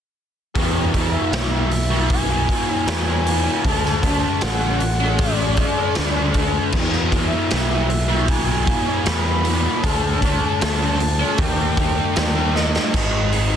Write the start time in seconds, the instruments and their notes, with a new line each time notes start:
0.55 distorted electric guitar E2 B2 E3, picked electric bass E2, kick, open hi-hat
0.94 distorted electric guitar E2 B2 E3, kick, open hi-hat
1.11 soft synth lead E5
1.31 picked electric bass B1, distorted electric guitar E2 B2 E3, snare, open hi-hat
1.51 distorted electric guitar B2 E3
1.71 muted distorted electric guitar stroke, open hi-hat
1.90 distorted electric guitar B2 E3
2.10 soft synth lead G#5, kick, open hi-hat
2.30 distorted electric guitar B2 E3
2.49 distorted electric guitar E2 B2 E3, kick, open hi-hat
2.69 distorted electric guitar B2 E3
2.87 distorted electric guitar E2 B2 E3, picked electric bass E2, soft synth lead G#5, snare, open hi-hat
3.07 distorted electric guitar B2 E3
3.26 distorted electric guitar E2 B2 E3, open hi-hat
3.63 picked electric bass D2, distorted electric guitar D3 A3, soft synth lead A5, kick, open hi-hat
3.68 distorted electric guitar D4
3.85 snare
4.03 distorted electric guitar D3 A3 D4, kick, open hi-hat
4.41 picked electric bass A1, distorted electric guitar D3 A3 D4, soft synth lead F#5, snare, open hi-hat
4.61 distorted electric guitar A3 D4
4.80 muted distorted electric guitar stroke, open hi-hat
5.00 distorted electric guitar A3 D4
5.19 soft synth lead D5, kick, open hi-hat
5.39 distorted electric guitar A3 D4
5.57 distorted electric guitar D3 A3, kick, open hi-hat
5.61 distorted electric guitar D4
5.78 distorted electric guitar A3 D4
5.95 picked electric bass D2, distorted electric guitar D3 A3, snare, open hi-hat
6.00 distorted electric guitar D4
6.16 distorted electric guitar A3 D4
6.34 distorted electric guitar D3, kick, open hi-hat
6.38 distorted electric guitar A3 D4
6.72 picked electric bass E2, distorted electric guitar E2 B2, kick, crash
6.77 distorted electric guitar E3
6.93 snare
7.12 distorted electric guitar E2 B2 E3, kick, open hi-hat
7.27 soft synth lead E5
7.51 picked electric bass B1, distorted electric guitar E2 B2 E3, soft synth lead E5, snare, open hi-hat
7.69 distorted electric guitar B2 E3
7.89 muted distorted electric guitar stroke, open hi-hat
8.08 distorted electric guitar B2 E3
8.28 soft synth lead G#5, kick, open hi-hat
8.46 distorted electric guitar B2 E3
8.65 distorted electric guitar E2 B2 E3, kick, open hi-hat
8.85 distorted electric guitar B2 E3
9.04 distorted electric guitar E2 B2 E3, picked electric bass E2, soft synth lead B5, snare, open hi-hat
9.24 distorted electric guitar B2 E3
9.44 distorted electric guitar E2 B2 E3, open hi-hat
9.82 picked electric bass D2, distorted electric guitar D3 A3 D4, soft synth lead A5, kick, open hi-hat
10.21 distorted electric guitar D3 A3 D4, kick, open hi-hat
10.60 picked electric bass D2, distorted electric guitar D3 A3 D4, soft synth lead A5, snare, open hi-hat
10.80 distorted electric guitar A3 D4
10.99 muted distorted electric guitar stroke, open hi-hat
11.19 distorted electric guitar A3 D4
11.38 picked electric bass D#2, distorted electric guitar D#3 A#3 D#4, soft synth lead G5, kick, open hi-hat
11.57 distorted electric guitar A#3 D#4
11.77 distorted electric guitar D#3 A#3 D#4, kick, open hi-hat
11.96 distorted electric guitar A#3 D#4
12.16 picked electric bass D#2, distorted electric guitar D#3 A#3 D#4, snare, open hi-hat
12.35 distorted electric guitar A#3 D#4
12.54 distorted electric guitar D#3 A#3 D#4, soft synth lead D#5, snare
12.76 snare
12.93 picked electric bass G#1, distorted electric guitar G#2 D#3 G#3, soft synth lead D#5, kick, crash
13.32 distorted electric guitar D#3 G#3, open hi-hat